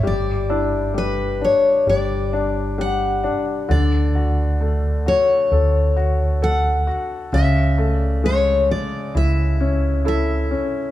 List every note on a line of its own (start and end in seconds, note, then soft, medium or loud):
0.03 1.44 G1 medium
0.03 0.93 G3 soft
0.03 1.00 D5 medium
0.49 1.40 D4 soft
0.49 4.10 E4 medium
0.94 1.86 G3 soft
0.94 1.44 B4 medium
1.41 2.32 D4 soft
1.41 1.89 C#5 medium
1.87 3.25 G1 medium
1.87 2.77 G3 soft
1.87 2.81 D5 medium
2.33 3.22 D4 soft
2.78 3.67 G3 soft
2.78 3.44 F#5 medium
3.24 3.68 D4 soft
3.69 5.08 D2 medium
3.69 7.28 D3 medium
3.69 5.08 D5 medium
4.15 5.05 F#4 soft
4.61 6.38 A3 soft
5.06 5.95 F#4 soft
5.06 6.43 C#5 medium
5.51 6.90 D2 medium
5.51 6.41 A4 soft
5.96 6.86 F#4 soft
6.42 7.30 A4 medium
6.42 7.34 F#5 medium
6.87 7.31 F#4 soft
7.33 8.71 C#2 medium
7.33 10.91 C#3 medium
7.33 7.96 E5 medium
7.78 9.56 A3 soft
7.96 8.20 D5 medium
8.24 10.02 G#3 soft
8.24 8.71 C#5 medium
8.71 9.17 D5 medium
9.15 10.53 C#2 medium
9.15 10.04 E4 soft
9.15 10.07 E5 medium
9.61 10.49 C#4 soft
10.05 10.91 E4 soft
10.05 10.91 A4 soft
10.05 10.91 E5 medium
10.51 10.91 C#4 soft